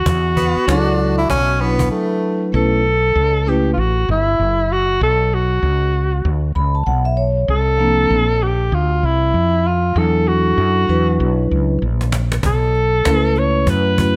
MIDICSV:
0, 0, Header, 1, 7, 480
1, 0, Start_track
1, 0, Key_signature, 2, "minor"
1, 0, Tempo, 618557
1, 48, Time_signature, 4, 2, 24, 8
1, 10988, End_track
2, 0, Start_track
2, 0, Title_t, "Alto saxophone"
2, 0, Program_c, 0, 65
2, 0, Note_on_c, 0, 66, 94
2, 1490, Note_off_c, 0, 66, 0
2, 1985, Note_on_c, 0, 69, 108
2, 2706, Note_on_c, 0, 67, 86
2, 2718, Note_off_c, 0, 69, 0
2, 2894, Note_off_c, 0, 67, 0
2, 2898, Note_on_c, 0, 65, 78
2, 2942, Note_on_c, 0, 66, 94
2, 2953, Note_off_c, 0, 65, 0
2, 3175, Note_off_c, 0, 66, 0
2, 3189, Note_on_c, 0, 64, 97
2, 3665, Note_on_c, 0, 66, 91
2, 3676, Note_off_c, 0, 64, 0
2, 3896, Note_off_c, 0, 66, 0
2, 3905, Note_on_c, 0, 69, 104
2, 4144, Note_on_c, 0, 66, 87
2, 4156, Note_off_c, 0, 69, 0
2, 5096, Note_off_c, 0, 66, 0
2, 5820, Note_on_c, 0, 69, 117
2, 6542, Note_on_c, 0, 67, 96
2, 6554, Note_off_c, 0, 69, 0
2, 6785, Note_on_c, 0, 65, 93
2, 6797, Note_off_c, 0, 67, 0
2, 7026, Note_on_c, 0, 64, 103
2, 7037, Note_off_c, 0, 65, 0
2, 7506, Note_on_c, 0, 65, 87
2, 7518, Note_off_c, 0, 64, 0
2, 7746, Note_on_c, 0, 69, 98
2, 7757, Note_off_c, 0, 65, 0
2, 7977, Note_on_c, 0, 66, 95
2, 7989, Note_off_c, 0, 69, 0
2, 8932, Note_off_c, 0, 66, 0
2, 9667, Note_on_c, 0, 69, 103
2, 10388, Note_on_c, 0, 73, 98
2, 10399, Note_off_c, 0, 69, 0
2, 10626, Note_on_c, 0, 71, 95
2, 10638, Note_off_c, 0, 73, 0
2, 10988, Note_off_c, 0, 71, 0
2, 10988, End_track
3, 0, Start_track
3, 0, Title_t, "Vibraphone"
3, 0, Program_c, 1, 11
3, 514, Note_on_c, 1, 54, 83
3, 518, Note_on_c, 1, 62, 69
3, 526, Note_on_c, 1, 64, 67
3, 532, Note_on_c, 1, 68, 65
3, 581, Note_on_c, 1, 69, 88
3, 593, Note_off_c, 1, 68, 0
3, 880, Note_off_c, 1, 54, 0
3, 882, Note_off_c, 1, 62, 0
3, 886, Note_off_c, 1, 64, 0
3, 913, Note_off_c, 1, 69, 0
3, 1235, Note_on_c, 1, 54, 68
3, 1240, Note_on_c, 1, 62, 62
3, 1247, Note_on_c, 1, 64, 55
3, 1253, Note_on_c, 1, 71, 67
3, 1925, Note_off_c, 1, 54, 0
3, 1928, Note_off_c, 1, 62, 0
3, 1931, Note_off_c, 1, 64, 0
3, 1934, Note_off_c, 1, 71, 0
3, 1957, Note_on_c, 1, 57, 67
3, 1965, Note_on_c, 1, 61, 59
3, 1972, Note_on_c, 1, 64, 66
3, 1978, Note_on_c, 1, 71, 73
3, 2148, Note_off_c, 1, 57, 0
3, 2151, Note_off_c, 1, 61, 0
3, 2155, Note_off_c, 1, 64, 0
3, 2158, Note_off_c, 1, 71, 0
3, 2680, Note_on_c, 1, 57, 66
3, 2688, Note_on_c, 1, 61, 63
3, 2694, Note_on_c, 1, 64, 69
3, 2701, Note_on_c, 1, 71, 78
3, 2869, Note_off_c, 1, 57, 0
3, 2873, Note_off_c, 1, 61, 0
3, 2876, Note_off_c, 1, 64, 0
3, 2880, Note_off_c, 1, 71, 0
3, 5085, Note_on_c, 1, 83, 64
3, 5224, Note_off_c, 1, 83, 0
3, 5236, Note_on_c, 1, 81, 63
3, 5321, Note_off_c, 1, 81, 0
3, 5326, Note_on_c, 1, 78, 72
3, 5465, Note_off_c, 1, 78, 0
3, 5473, Note_on_c, 1, 76, 75
3, 5560, Note_off_c, 1, 76, 0
3, 5564, Note_on_c, 1, 73, 76
3, 5789, Note_off_c, 1, 73, 0
3, 6033, Note_on_c, 1, 53, 65
3, 6040, Note_on_c, 1, 60, 52
3, 6046, Note_on_c, 1, 62, 58
3, 6052, Note_on_c, 1, 58, 76
3, 6340, Note_off_c, 1, 53, 0
3, 6343, Note_off_c, 1, 60, 0
3, 6346, Note_off_c, 1, 62, 0
3, 6349, Note_off_c, 1, 58, 0
3, 7713, Note_on_c, 1, 54, 66
3, 7721, Note_on_c, 1, 62, 56
3, 7726, Note_on_c, 1, 64, 55
3, 7734, Note_on_c, 1, 69, 76
3, 8404, Note_off_c, 1, 54, 0
3, 8408, Note_off_c, 1, 62, 0
3, 8410, Note_off_c, 1, 64, 0
3, 8414, Note_off_c, 1, 69, 0
3, 8436, Note_on_c, 1, 54, 62
3, 8441, Note_on_c, 1, 62, 55
3, 8448, Note_on_c, 1, 64, 62
3, 8454, Note_on_c, 1, 71, 79
3, 9125, Note_off_c, 1, 54, 0
3, 9128, Note_off_c, 1, 62, 0
3, 9131, Note_off_c, 1, 64, 0
3, 9135, Note_off_c, 1, 71, 0
3, 10118, Note_on_c, 1, 57, 61
3, 10125, Note_on_c, 1, 61, 62
3, 10129, Note_on_c, 1, 64, 61
3, 10136, Note_on_c, 1, 70, 59
3, 10186, Note_on_c, 1, 71, 70
3, 10194, Note_off_c, 1, 70, 0
3, 10807, Note_off_c, 1, 57, 0
3, 10810, Note_off_c, 1, 61, 0
3, 10812, Note_off_c, 1, 64, 0
3, 10839, Note_on_c, 1, 57, 61
3, 10840, Note_off_c, 1, 71, 0
3, 10845, Note_on_c, 1, 61, 55
3, 10851, Note_on_c, 1, 64, 59
3, 10858, Note_on_c, 1, 66, 71
3, 10988, Note_off_c, 1, 57, 0
3, 10988, Note_off_c, 1, 61, 0
3, 10988, Note_off_c, 1, 64, 0
3, 10988, Note_off_c, 1, 66, 0
3, 10988, End_track
4, 0, Start_track
4, 0, Title_t, "Tenor saxophone"
4, 0, Program_c, 2, 66
4, 281, Note_on_c, 2, 59, 78
4, 507, Note_off_c, 2, 59, 0
4, 524, Note_on_c, 2, 62, 87
4, 887, Note_off_c, 2, 62, 0
4, 914, Note_on_c, 2, 64, 95
4, 1000, Note_off_c, 2, 64, 0
4, 1009, Note_on_c, 2, 61, 102
4, 1247, Note_on_c, 2, 59, 89
4, 1258, Note_off_c, 2, 61, 0
4, 1478, Note_off_c, 2, 59, 0
4, 1483, Note_on_c, 2, 57, 78
4, 1934, Note_off_c, 2, 57, 0
4, 10988, End_track
5, 0, Start_track
5, 0, Title_t, "Fretless electric bass"
5, 0, Program_c, 3, 35
5, 47, Note_on_c, 3, 40, 100
5, 417, Note_off_c, 3, 40, 0
5, 526, Note_on_c, 3, 37, 93
5, 983, Note_off_c, 3, 37, 0
5, 1007, Note_on_c, 3, 35, 87
5, 1463, Note_off_c, 3, 35, 0
5, 1970, Note_on_c, 3, 35, 103
5, 2425, Note_off_c, 3, 35, 0
5, 2448, Note_on_c, 3, 37, 99
5, 2904, Note_off_c, 3, 37, 0
5, 2929, Note_on_c, 3, 33, 85
5, 3156, Note_off_c, 3, 33, 0
5, 3171, Note_on_c, 3, 31, 92
5, 3398, Note_off_c, 3, 31, 0
5, 3409, Note_on_c, 3, 30, 84
5, 3864, Note_off_c, 3, 30, 0
5, 3890, Note_on_c, 3, 35, 97
5, 4345, Note_off_c, 3, 35, 0
5, 4366, Note_on_c, 3, 37, 91
5, 4823, Note_off_c, 3, 37, 0
5, 4849, Note_on_c, 3, 38, 106
5, 5077, Note_off_c, 3, 38, 0
5, 5088, Note_on_c, 3, 37, 93
5, 5316, Note_off_c, 3, 37, 0
5, 5328, Note_on_c, 3, 35, 93
5, 5784, Note_off_c, 3, 35, 0
5, 5806, Note_on_c, 3, 36, 98
5, 6263, Note_off_c, 3, 36, 0
5, 6288, Note_on_c, 3, 34, 87
5, 6744, Note_off_c, 3, 34, 0
5, 6767, Note_on_c, 3, 38, 95
5, 6996, Note_off_c, 3, 38, 0
5, 7008, Note_on_c, 3, 36, 83
5, 7236, Note_off_c, 3, 36, 0
5, 7248, Note_on_c, 3, 41, 85
5, 7704, Note_off_c, 3, 41, 0
5, 7727, Note_on_c, 3, 40, 109
5, 8183, Note_off_c, 3, 40, 0
5, 8208, Note_on_c, 3, 42, 100
5, 8436, Note_off_c, 3, 42, 0
5, 8451, Note_on_c, 3, 40, 87
5, 8677, Note_off_c, 3, 40, 0
5, 8691, Note_on_c, 3, 35, 99
5, 8918, Note_off_c, 3, 35, 0
5, 8934, Note_on_c, 3, 37, 91
5, 9159, Note_off_c, 3, 37, 0
5, 9172, Note_on_c, 3, 34, 91
5, 9626, Note_off_c, 3, 34, 0
5, 9647, Note_on_c, 3, 35, 97
5, 10104, Note_off_c, 3, 35, 0
5, 10134, Note_on_c, 3, 37, 97
5, 10587, Note_off_c, 3, 37, 0
5, 10607, Note_on_c, 3, 42, 104
5, 10988, Note_off_c, 3, 42, 0
5, 10988, End_track
6, 0, Start_track
6, 0, Title_t, "Cajon"
6, 47, Note_on_c, 9, 36, 116
6, 125, Note_off_c, 9, 36, 0
6, 286, Note_on_c, 9, 36, 78
6, 364, Note_off_c, 9, 36, 0
6, 446, Note_on_c, 9, 38, 32
6, 524, Note_off_c, 9, 38, 0
6, 532, Note_on_c, 9, 38, 102
6, 610, Note_off_c, 9, 38, 0
6, 766, Note_on_c, 9, 38, 38
6, 844, Note_off_c, 9, 38, 0
6, 1006, Note_on_c, 9, 36, 91
6, 1083, Note_off_c, 9, 36, 0
6, 1247, Note_on_c, 9, 38, 29
6, 1325, Note_off_c, 9, 38, 0
6, 1391, Note_on_c, 9, 36, 87
6, 1468, Note_off_c, 9, 36, 0
6, 9319, Note_on_c, 9, 38, 67
6, 9396, Note_off_c, 9, 38, 0
6, 9408, Note_on_c, 9, 38, 97
6, 9486, Note_off_c, 9, 38, 0
6, 9558, Note_on_c, 9, 38, 98
6, 9636, Note_off_c, 9, 38, 0
6, 9647, Note_on_c, 9, 36, 112
6, 9724, Note_off_c, 9, 36, 0
6, 9801, Note_on_c, 9, 38, 34
6, 9878, Note_off_c, 9, 38, 0
6, 9890, Note_on_c, 9, 38, 42
6, 9967, Note_off_c, 9, 38, 0
6, 10129, Note_on_c, 9, 38, 100
6, 10207, Note_off_c, 9, 38, 0
6, 10275, Note_on_c, 9, 38, 31
6, 10353, Note_off_c, 9, 38, 0
6, 10363, Note_on_c, 9, 38, 40
6, 10440, Note_off_c, 9, 38, 0
6, 10607, Note_on_c, 9, 36, 90
6, 10684, Note_off_c, 9, 36, 0
6, 10849, Note_on_c, 9, 36, 85
6, 10927, Note_off_c, 9, 36, 0
6, 10988, End_track
7, 0, Start_track
7, 0, Title_t, "Muted fretless electric bass strokes"
7, 437, Note_on_c, 9, 29, 46
7, 515, Note_off_c, 9, 29, 0
7, 10988, End_track
0, 0, End_of_file